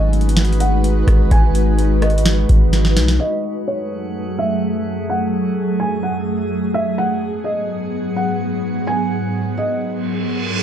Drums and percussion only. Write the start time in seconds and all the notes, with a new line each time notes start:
0.13 closed hi-hat
0.21 closed hi-hat
0.29 closed hi-hat
0.37 snare, closed hi-hat
0.45 closed hi-hat
0.53 closed hi-hat
0.60 closed hi-hat
0.84 closed hi-hat
1.07 kick, cross-stick, closed hi-hat
1.31 kick, closed hi-hat
1.55 closed hi-hat
1.79 closed hi-hat
2.02 cross-stick, closed hi-hat
2.10 closed hi-hat
2.18 closed hi-hat
2.26 snare, closed hi-hat
2.49 kick, closed hi-hat
2.73 snare, closed hi-hat
2.85 snare
2.97 snare, closed hi-hat
3.08 snare